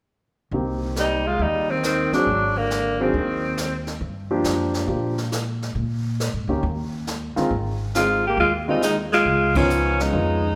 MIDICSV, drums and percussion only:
0, 0, Header, 1, 2, 480
1, 0, Start_track
1, 0, Key_signature, -3, "minor"
1, 0, Tempo, 436364
1, 577, Time_signature, 4, 2, 24, 8
1, 11608, End_track
2, 0, Start_track
2, 0, Title_t, "Drums"
2, 574, Note_on_c, 9, 36, 26
2, 581, Note_on_c, 9, 25, 34
2, 684, Note_off_c, 9, 36, 0
2, 1058, Note_on_c, 9, 38, 46
2, 1058, Note_on_c, 9, 44, 44
2, 1168, Note_off_c, 9, 38, 0
2, 1168, Note_off_c, 9, 44, 0
2, 1532, Note_on_c, 9, 36, 26
2, 1536, Note_off_c, 9, 25, 0
2, 1536, Note_on_c, 9, 25, 35
2, 1642, Note_off_c, 9, 36, 0
2, 2017, Note_on_c, 9, 38, 47
2, 2017, Note_on_c, 9, 44, 42
2, 2127, Note_off_c, 9, 38, 0
2, 2127, Note_off_c, 9, 44, 0
2, 2342, Note_on_c, 9, 38, 29
2, 2452, Note_off_c, 9, 38, 0
2, 2494, Note_on_c, 9, 36, 24
2, 2497, Note_off_c, 9, 25, 0
2, 2497, Note_on_c, 9, 25, 34
2, 2604, Note_off_c, 9, 36, 0
2, 2977, Note_on_c, 9, 38, 44
2, 2977, Note_on_c, 9, 44, 43
2, 3087, Note_off_c, 9, 38, 0
2, 3087, Note_off_c, 9, 44, 0
2, 3454, Note_on_c, 9, 36, 25
2, 3459, Note_off_c, 9, 25, 0
2, 3459, Note_on_c, 9, 25, 34
2, 3564, Note_off_c, 9, 36, 0
2, 3932, Note_on_c, 9, 38, 49
2, 3932, Note_on_c, 9, 44, 52
2, 4042, Note_off_c, 9, 38, 0
2, 4042, Note_off_c, 9, 44, 0
2, 4254, Note_on_c, 9, 38, 30
2, 4364, Note_off_c, 9, 38, 0
2, 4410, Note_off_c, 9, 25, 0
2, 4410, Note_on_c, 9, 25, 34
2, 4411, Note_on_c, 9, 36, 25
2, 4521, Note_off_c, 9, 36, 0
2, 4886, Note_on_c, 9, 38, 50
2, 4886, Note_on_c, 9, 44, 40
2, 4996, Note_off_c, 9, 38, 0
2, 4996, Note_off_c, 9, 44, 0
2, 5213, Note_on_c, 9, 38, 31
2, 5323, Note_off_c, 9, 38, 0
2, 5369, Note_on_c, 9, 36, 26
2, 5375, Note_off_c, 9, 25, 0
2, 5375, Note_on_c, 9, 25, 38
2, 5479, Note_off_c, 9, 36, 0
2, 5698, Note_on_c, 9, 38, 36
2, 5808, Note_off_c, 9, 38, 0
2, 5852, Note_on_c, 9, 38, 47
2, 5852, Note_on_c, 9, 44, 44
2, 5962, Note_off_c, 9, 38, 0
2, 5962, Note_off_c, 9, 44, 0
2, 6185, Note_on_c, 9, 38, 28
2, 6295, Note_off_c, 9, 38, 0
2, 6332, Note_on_c, 9, 36, 26
2, 6337, Note_off_c, 9, 25, 0
2, 6337, Note_on_c, 9, 25, 41
2, 6442, Note_off_c, 9, 36, 0
2, 6821, Note_on_c, 9, 38, 45
2, 6821, Note_on_c, 9, 44, 42
2, 6931, Note_off_c, 9, 38, 0
2, 6931, Note_off_c, 9, 44, 0
2, 7295, Note_on_c, 9, 36, 26
2, 7303, Note_off_c, 9, 25, 0
2, 7303, Note_on_c, 9, 25, 41
2, 7405, Note_off_c, 9, 36, 0
2, 7779, Note_on_c, 9, 38, 44
2, 7779, Note_on_c, 9, 44, 42
2, 7889, Note_off_c, 9, 38, 0
2, 7889, Note_off_c, 9, 44, 0
2, 8104, Note_on_c, 9, 38, 27
2, 8214, Note_off_c, 9, 38, 0
2, 8258, Note_on_c, 9, 36, 26
2, 8259, Note_off_c, 9, 25, 0
2, 8259, Note_on_c, 9, 25, 35
2, 8368, Note_off_c, 9, 36, 0
2, 8741, Note_on_c, 9, 38, 49
2, 8741, Note_on_c, 9, 44, 55
2, 8851, Note_off_c, 9, 38, 0
2, 8851, Note_off_c, 9, 44, 0
2, 9218, Note_on_c, 9, 36, 27
2, 9223, Note_off_c, 9, 25, 0
2, 9223, Note_on_c, 9, 25, 37
2, 9328, Note_off_c, 9, 36, 0
2, 9705, Note_on_c, 9, 38, 46
2, 9705, Note_on_c, 9, 44, 52
2, 9815, Note_off_c, 9, 38, 0
2, 9815, Note_off_c, 9, 44, 0
2, 10038, Note_on_c, 9, 38, 27
2, 10148, Note_off_c, 9, 38, 0
2, 10181, Note_on_c, 9, 36, 26
2, 10182, Note_off_c, 9, 25, 0
2, 10182, Note_on_c, 9, 25, 43
2, 10291, Note_off_c, 9, 36, 0
2, 10506, Note_on_c, 9, 51, 50
2, 10508, Note_on_c, 9, 36, 61
2, 10616, Note_off_c, 9, 51, 0
2, 10618, Note_off_c, 9, 36, 0
2, 10668, Note_on_c, 9, 44, 47
2, 10778, Note_off_c, 9, 44, 0
2, 10996, Note_on_c, 9, 38, 30
2, 11106, Note_off_c, 9, 38, 0
2, 11145, Note_on_c, 9, 36, 28
2, 11146, Note_off_c, 9, 25, 0
2, 11146, Note_on_c, 9, 25, 36
2, 11255, Note_off_c, 9, 36, 0
2, 11608, Note_off_c, 9, 25, 0
2, 11608, End_track
0, 0, End_of_file